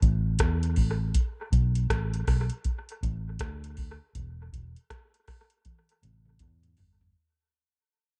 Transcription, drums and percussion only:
0.02 kick loud
0.02 closed hi-hat medium
0.39 kick loud
0.39 cross-stick loud
0.39 closed hi-hat loud
0.63 closed hi-hat medium
0.76 kick medium
0.76 open hi-hat medium
1.14 kick loud
1.14 closed hi-hat medium
1.52 kick medium
1.52 closed hi-hat medium
1.75 closed hi-hat soft
1.90 kick loud
1.90 cross-stick loud
1.90 closed hi-hat medium
2.14 closed hi-hat soft
2.27 kick medium
2.27 cross-stick medium
2.27 open hi-hat medium
2.50 closed hi-hat soft
2.64 kick loud
2.64 closed hi-hat medium
2.89 closed hi-hat medium
3.03 kick loud
3.03 closed hi-hat medium
3.39 kick loud
3.39 cross-stick loud
3.39 closed hi-hat medium
3.64 closed hi-hat soft
3.77 kick medium
3.77 open hi-hat medium
4.15 kick loud
4.15 closed hi-hat medium
4.53 kick medium
4.53 closed hi-hat medium
4.76 closed hi-hat soft
4.90 kick loud
4.90 cross-stick loud
4.90 closed hi-hat medium
5.14 closed hi-hat soft
5.28 kick loud
5.28 cross-stick medium
5.28 open hi-hat medium
5.50 closed hi-hat medium
5.65 kick loud
5.65 closed hi-hat medium
5.65 high tom soft
5.89 closed hi-hat medium
6.03 closed hi-hat medium
6.03 mid tom medium
6.25 mid tom medium
6.39 kick loud
6.39 closed hi-hat medium
6.39 mid tom medium
6.63 closed hi-hat soft
6.63 mid tom medium
6.77 floor tom medium
6.77 open hi-hat medium
7.01 floor tom medium

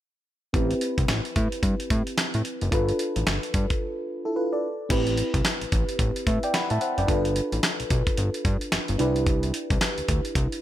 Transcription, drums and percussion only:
0.54 kick loud
0.54 closed hi-hat medium
0.71 closed hi-hat soft
0.81 closed hi-hat medium
0.98 kick medium
0.98 closed hi-hat medium
1.08 snare loud
1.08 clap medium
1.08 closed hi-hat medium
1.25 closed hi-hat soft
1.36 kick medium
1.36 closed hi-hat medium
1.52 closed hi-hat medium
1.63 kick medium
1.63 closed hi-hat medium
1.80 closed hi-hat medium
1.90 kick medium
1.90 closed hi-hat medium
2.07 closed hi-hat medium
2.18 snare loud
2.18 clap medium
2.18 closed hi-hat medium
2.34 closed hi-hat soft
2.45 closed hi-hat medium
2.61 closed hi-hat soft
2.72 kick loud
2.72 closed hi-hat medium
2.89 closed hi-hat soft
2.99 closed hi-hat medium
3.16 closed hi-hat medium
3.27 snare loud
3.27 clap medium
3.27 closed hi-hat medium
3.43 closed hi-hat soft
3.54 kick loud
3.54 closed hi-hat medium
3.70 kick medium
3.70 closed hi-hat medium
4.90 kick loud
4.90 closed hi-hat medium
4.90 crash medium
5.07 closed hi-hat medium
5.17 closed hi-hat medium
5.34 kick medium
5.34 closed hi-hat medium
5.45 snare loud
5.45 clap medium
5.45 closed hi-hat medium
5.61 closed hi-hat soft
5.72 kick loud
5.72 closed hi-hat medium
5.89 closed hi-hat medium
5.99 kick medium
5.99 closed hi-hat medium
6.16 closed hi-hat medium
6.27 kick medium
6.27 closed hi-hat medium
6.43 closed hi-hat medium
6.54 snare loud
6.54 clap medium
6.54 closed hi-hat medium
6.70 closed hi-hat medium
6.81 closed hi-hat medium
6.98 closed hi-hat soft
7.08 kick loud
7.08 closed hi-hat medium
7.25 closed hi-hat medium
7.36 closed hi-hat medium
7.52 closed hi-hat medium
7.63 snare loud
7.63 clap medium
7.63 closed hi-hat medium
7.80 closed hi-hat medium
7.90 kick loud
7.90 closed hi-hat medium
8.07 kick medium
8.07 closed hi-hat medium
8.17 closed hi-hat medium
8.34 closed hi-hat medium
8.45 kick medium
8.45 closed hi-hat medium
8.61 closed hi-hat medium
8.72 snare loud
8.72 clap medium
8.72 closed hi-hat medium
8.88 closed hi-hat medium
8.99 closed hi-hat medium
9.16 closed hi-hat soft
9.26 kick loud
9.26 closed hi-hat medium
9.43 closed hi-hat medium
9.54 closed hi-hat medium
9.70 kick loud
9.70 closed hi-hat medium
9.81 snare loud
9.81 clap medium
9.81 closed hi-hat medium
9.98 closed hi-hat soft
10.08 kick loud
10.08 closed hi-hat medium
10.25 closed hi-hat medium
10.35 kick medium
10.35 closed hi-hat medium
10.52 closed hi-hat medium

